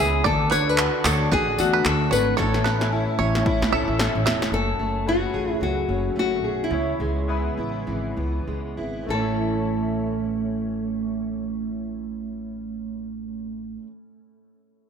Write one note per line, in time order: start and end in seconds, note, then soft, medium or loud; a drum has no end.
0.00 0.20 C#2 loud
0.00 0.24 C#3 medium
0.00 0.31 G#3 medium
0.00 0.27 B3 loud
0.00 0.31 B3 medium
0.00 0.27 C#4 medium
0.00 0.27 E4 medium
0.00 0.31 E4 medium
0.00 0.23 G#4 loud
0.00 0.27 G#4 medium
0.00 0.27 B4 loud
0.00 0.26 C#5 medium
0.00 0.13 E5 medium
0.24 0.47 D2 loud
0.24 2.39 D3 medium
0.24 0.51 D4 medium
0.24 0.51 F#4 medium
0.24 0.51 A4 medium
0.24 0.51 A4 loud
0.24 0.50 D5 loud
0.24 kick loud
0.51 0.87 D2 loud
0.51 1.04 D4 medium
0.51 0.77 B4 medium
0.51 0.69 C#5 medium
0.51 tambourine medium
0.65 1.26 D4 medium
0.65 1.27 F#4 medium
0.65 1.27 A4 medium
0.69 1.06 B4 loud
0.78 1.30 F#4 medium
0.78 clap loud
1.04 1.27 D2 loud
1.04 2.45 D4 medium
1.04 1.33 A4 medium
1.04 1.31 C#5 medium
1.04 clap loud
1.04 tambourine medium
1.31 1.54 A1 loud
1.31 1.84 F#4 medium
1.31 1.60 G#4 loud
1.31 1.47 B4 medium
1.31 kick loud
1.57 1.80 E2 loud
1.57 2.12 A3 medium
1.57 2.11 D4 medium
1.57 2.11 F#4 medium
1.57 1.84 F#4 medium
1.57 2.12 A4 medium
1.57 tambourine medium
1.73 1.84 B4 medium
1.85 2.07 D2 loud
1.85 2.45 F#4 medium
1.85 2.12 A4 medium
1.85 clap loud
2.11 2.34 G#1 loud
2.11 3.72 A3 medium
2.11 2.37 B4 medium
2.11 2.27 C#5 medium
2.11 tambourine medium
2.37 3.05 A1 loud
2.37 4.53 A2 medium
2.37 2.65 C#4 medium
2.37 2.65 E4 medium
2.37 3.95 A4 medium
2.37 2.66 A4 medium
2.37 2.63 C#5 loud
2.37 kick loud
2.37 snare medium
2.54 snare medium
2.64 3.20 C#4 medium
2.64 2.90 B4 medium
2.64 snare medium
2.80 3.41 C#4 medium
2.80 3.41 E4 medium
2.80 3.42 G#5 medium
2.80 snare medium
2.93 3.45 E4 medium
3.19 3.41 A1 loud
3.19 5.07 C#4 medium
3.19 3.44 C#5 medium
3.35 snare medium
3.46 3.98 E4 medium
3.46 kick loud
3.62 3.71 A2 loud
3.62 snare medium
3.72 3.85 B1 loud
3.72 4.26 A3 medium
3.72 4.25 C#4 medium
3.72 4.25 E4 medium
3.72 4.26 A4 loud
3.72 3.98 E5 medium
3.88 4.10 A1 medium
3.99 4.59 E4 medium
3.99 snare loud
4.15 4.24 A1 medium
4.26 4.48 E1 medium
4.26 4.79 A3 medium
4.26 4.41 E5 medium
4.26 snare loud
4.42 snare loud
4.52 4.74 F#1 medium
4.52 6.72 F#2 medium
4.52 4.89 A3 medium
4.52 4.89 F#4 medium
4.52 5.08 A4 loud
4.52 4.90 C#5 medium
4.52 4.90 G#5 medium
4.79 5.24 F#1 medium
4.79 6.15 A3 medium
5.06 5.79 A3 medium
5.06 5.88 C#4 medium
5.06 5.79 F#4 medium
5.06 5.52 F#4 medium
5.06 5.80 G#4 medium
5.06 5.80 B4 medium
5.34 5.56 A1 medium
5.34 6.44 G#4 medium
5.52 5.62 E4 medium
5.61 5.83 C#2 medium
5.61 6.79 F#3 medium
5.61 6.18 F#4 medium
5.89 6.11 F#1 medium
5.89 7.29 C#4 medium
6.16 6.44 F#1 medium
6.16 6.78 A3 medium
6.16 6.63 F#4 medium
6.44 6.67 B1 medium
6.44 6.72 G#4 medium
6.64 8.76 E4 medium
6.71 6.94 C#2 medium
6.71 9.03 C#3 medium
6.71 7.10 B3 medium
6.71 7.10 E4 medium
6.71 7.58 E4 medium
6.71 7.11 G#4 medium
6.71 7.11 C#5 medium
7.00 7.47 C#2 medium
7.00 8.46 G#3 medium
7.28 8.08 B3 medium
7.28 8.15 B3 medium
7.28 8.08 E4 medium
7.28 8.08 G#4 medium
7.28 8.09 B4 medium
7.57 7.82 A1 medium
7.57 8.77 E4 medium
7.87 8.12 G#1 medium
7.87 9.09 E3 medium
8.17 8.42 C#2 medium
8.17 9.17 B3 soft
8.48 8.73 C#2 medium
8.48 9.13 G#3 soft
8.77 9.04 G#1 medium
8.77 9.22 E4 medium
9.03 13.76 A2 medium
9.03 13.75 A3 medium
9.08 13.77 A1 medium
9.08 13.82 E3 medium
9.08 13.77 C#4 medium
9.08 13.80 E4 medium
9.08 13.79 A4 medium
9.14 13.86 A3 medium
9.14 13.90 C#4 medium
9.14 13.83 C#5 medium
9.22 13.95 E4 medium